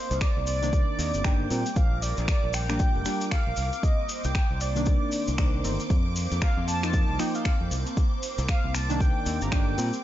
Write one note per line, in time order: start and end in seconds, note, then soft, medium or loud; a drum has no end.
0.00 1.48 A#3 medium
0.00 1.47 C4 medium
0.00 0.23 C5 medium
0.00 1.47 C5 medium
0.00 10.04 D6 medium
0.11 0.19 C2 loud
0.11 closed hi-hat medium
0.11 cabasa medium
0.21 0.46 D5 loud
0.21 finger snap loud
0.21 kick loud
0.21 closed hi-hat medium
0.21 cabasa soft
0.37 0.83 C2 medium
0.47 1.26 D5 loud
0.47 open hi-hat loud
0.47 cabasa medium
0.62 1.22 D#3 medium
0.62 1.22 A#3 medium
0.62 1.22 D4 loud
0.62 closed hi-hat medium
0.62 cabasa medium
0.73 kick loud
0.73 closed hi-hat medium
0.73 cabasa soft
0.99 1.11 D#2 loud
0.99 open hi-hat loud
0.99 cabasa loud
1.14 1.47 G1 medium
1.14 closed hi-hat medium
1.14 cabasa medium
1.24 1.47 D#3 medium
1.24 1.47 A#3 medium
1.24 1.47 D4 loud
1.24 1.78 G5 loud
1.24 finger snap loud
1.24 kick loud
1.24 closed hi-hat medium
1.24 cabasa soft
1.50 1.63 A#2 loud
1.50 1.68 G3 medium
1.50 3.55 G3 medium
1.50 1.69 A#3 medium
1.50 1.69 C4 medium
1.50 3.55 F4 medium
1.50 3.55 A#4 medium
1.50 open hi-hat loud
1.50 cabasa loud
1.66 closed hi-hat medium
1.66 cabasa medium
1.76 2.12 A#1 loud
1.76 2.04 F5 loud
1.76 kick loud
1.76 closed hi-hat medium
1.76 cabasa soft
2.02 2.27 D5 loud
2.02 open hi-hat loud
2.02 cabasa loud
2.17 2.26 A#1 loud
2.17 closed hi-hat medium
2.17 cabasa medium
2.28 2.55 D5 loud
2.28 finger snap loud
2.28 kick loud
2.28 closed hi-hat medium
2.28 cabasa soft
2.44 2.90 A#1 medium
2.53 3.31 G5 loud
2.53 finger snap medium
2.53 open hi-hat loud
2.53 cabasa loud
2.69 3.03 G3 medium
2.69 3.03 A#3 medium
2.69 3.03 D4 medium
2.69 finger snap medium
2.69 closed hi-hat medium
2.69 cabasa medium
2.79 kick loud
2.79 closed hi-hat medium
2.79 cabasa soft
2.95 3.03 F1 medium
3.05 3.31 G3 loud
3.05 3.32 A#3 medium
3.05 3.32 D4 loud
3.05 finger snap medium
3.05 open hi-hat loud
3.05 cabasa medium
3.21 closed hi-hat medium
3.21 cabasa medium
3.31 3.85 F5 loud
3.31 finger snap loud
3.31 kick loud
3.31 closed hi-hat medium
3.31 cabasa soft
3.47 3.55 A#1 medium
3.56 3.70 C2 medium
3.56 9.74 A#3 medium
3.56 9.74 C4 medium
3.56 9.74 C5 medium
3.56 open hi-hat medium
3.56 cabasa loud
3.73 closed hi-hat medium
3.73 cabasa medium
3.83 4.26 D#5 loud
3.83 kick loud
3.83 closed hi-hat soft
3.83 cabasa soft
4.09 open hi-hat loud
4.09 cabasa loud
4.24 4.33 C2 loud
4.24 4.62 G5 loud
4.24 closed hi-hat medium
4.24 cabasa medium
4.35 finger snap loud
4.35 kick loud
4.35 closed hi-hat medium
4.35 cabasa soft
4.51 4.97 C2 loud
4.61 5.64 D5 loud
4.61 open hi-hat medium
4.61 cabasa medium
4.76 5.36 D#3 medium
4.76 5.36 A#3 medium
4.76 5.36 D4 loud
4.76 closed hi-hat medium
4.76 cabasa medium
4.86 kick loud
4.86 closed hi-hat medium
4.86 cabasa soft
5.12 open hi-hat loud
5.12 cabasa loud
5.28 5.61 C2 loud
5.28 closed hi-hat medium
5.28 cabasa medium
5.38 5.61 D#3 loud
5.38 5.61 A#3 medium
5.38 5.61 D4 loud
5.38 finger snap loud
5.38 kick loud
5.38 closed hi-hat soft
5.38 cabasa soft
5.64 5.76 G1 loud
5.64 5.82 D#3 medium
5.64 5.82 A#3 medium
5.64 5.83 C4 medium
5.64 open hi-hat loud
5.64 cabasa loud
5.80 closed hi-hat medium
5.80 cabasa medium
5.90 6.26 F2 medium
5.90 7.69 F4 medium
5.90 kick loud
5.90 closed hi-hat medium
5.90 cabasa soft
6.16 open hi-hat loud
6.16 cabasa loud
6.31 6.40 F2 loud
6.31 closed hi-hat medium
6.31 cabasa medium
6.42 6.66 F5 loud
6.42 finger snap loud
6.42 kick loud
6.42 closed hi-hat medium
6.42 cabasa soft
6.57 7.04 F2 medium
6.68 7.21 A5 loud
6.68 open hi-hat medium
6.68 cabasa loud
6.83 7.17 F3 medium
6.83 7.17 A#3 medium
6.83 7.17 D#4 medium
6.83 finger snap medium
6.83 closed hi-hat medium
6.83 cabasa soft
6.93 kick loud
6.93 closed hi-hat medium
6.93 cabasa soft
7.09 7.17 C2 medium
7.19 7.45 F3 medium
7.19 7.45 A#3 medium
7.19 7.45 D#4 loud
7.19 7.36 G5 loud
7.19 finger snap medium
7.19 open hi-hat loud
7.19 cabasa loud
7.35 7.71 F5 medium
7.35 closed hi-hat medium
7.35 cabasa soft
7.45 finger snap loud
7.45 kick loud
7.45 closed hi-hat medium
7.45 cabasa soft
7.61 7.69 F2 medium
7.71 7.83 C2 medium
7.71 open hi-hat loud
7.71 cabasa medium
7.86 closed hi-hat medium
7.86 cabasa medium
7.97 kick loud
7.97 closed hi-hat medium
7.97 cabasa soft
8.23 open hi-hat loud
8.23 cabasa medium
8.38 8.46 C2 loud
8.38 closed hi-hat medium
8.38 cabasa medium
8.48 8.73 F5 loud
8.48 finger snap loud
8.48 kick loud
8.48 closed hi-hat medium
8.48 cabasa soft
8.64 9.11 C2 medium
8.75 9.02 A5 loud
8.75 finger snap medium
8.75 open hi-hat medium
8.75 cabasa medium
8.90 9.49 D#3 medium
8.90 9.50 A#3 medium
8.90 9.50 D4 loud
8.90 closed hi-hat medium
8.90 cabasa medium
9.00 9.44 G5 loud
9.00 kick loud
9.00 closed hi-hat medium
9.00 cabasa soft
9.26 9.38 D#2 loud
9.26 open hi-hat loud
9.26 cabasa medium
9.41 9.74 G1 medium
9.41 9.54 A#5 loud
9.41 closed hi-hat medium
9.41 cabasa medium
9.52 9.75 D#3 loud
9.52 9.75 A#3 medium
9.52 9.75 D4 loud
9.52 10.03 G5 loud
9.52 finger snap loud
9.52 kick loud
9.52 closed hi-hat medium
9.52 cabasa soft
9.78 9.90 A#2 loud
9.78 9.96 G3 medium
9.78 10.04 G3 medium
9.78 9.96 A#3 medium
9.78 9.96 C4 medium
9.78 10.04 F4 medium
9.78 10.04 A#4 medium
9.78 open hi-hat medium
9.78 cabasa medium
9.93 closed hi-hat medium
9.93 cabasa medium